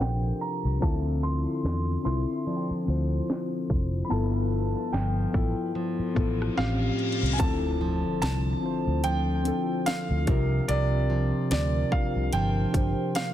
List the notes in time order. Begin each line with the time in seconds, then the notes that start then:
Already playing: C3 F3 D4 F4 G4 A4 A#4 C5
0.00 A#1 G5, snare, closed hi-hat
0.41 A#5, closed hi-hat
0.65 C2
0.80 D2 D3 C4 E4 F4 A5, kick, closed hi-hat
0.84 A4
1.23 C6
1.45 C4 E4 F4
1.49 A4
1.64 E2, snare, closed hi-hat
2.03 C2 C4 E4 F4 C5 C6
2.08 A4
2.34 E5
2.46 F3 D5, closed hi-hat
2.56 G5
2.70 muted fingered electric bass stroke
2.85 D2 C4 E4 F4, closed hi-hat
2.90 C5
3.28 snare, closed hi-hat
3.69 F1, kick, closed hi-hat
4.05 B5
4.09 G1 G2 B3 E4 F4 A5, closed hi-hat
4.13 A4
4.74 B3 E4 F4
4.78 A4
4.93 G1 F3 G5, snare, closed hi-hat
5.33 A1 B3 E4 F4, kick
5.37 A4
5.75 F3, closed hi-hat, reverse cymbal
5.99 muted fingered electric bass stroke
6.14 A1 B3 E4 F4, kick, closed hi-hat
6.19 A4
6.42 cross-stick
6.56 A1 A2 C4 C#4 F4 C5 F5, snare, closed hi-hat
6.60 G4
6.99 closed hi-hat
7.12 closed hi-hat
7.23 C2, closed hi-hat
7.33 G#5
7.38 D2 D3 C4 E4 F4 A5, kick, closed hi-hat, impact
7.42 A4
7.81 F3
8.22 C2 A5, snare, closed hi-hat
8.61 C4 E4 F4
8.65 C5
8.87 D2
9.04 F3 G5, closed hi-hat
9.43 C4 D4 F4, closed hi-hat
9.48 A4
9.86 C4 F5, snare, closed hi-hat
10.10 D2
10.26 C2 C3 D4 F4 G4, kick, closed hi-hat
10.30 A#4
10.68 C2 C3 D5, closed hi-hat
11.10 F3
11.51 D2 D5, snare, closed hi-hat
11.90 D4 F4 G4 F5, kick
11.94 A#4
12.16 C2
12.33 G1 F3 G5, closed hi-hat
12.72 G1 D4 F4 G4, kick, closed hi-hat
12.77 C5
13.15 A#3 F5, snare, closed hi-hat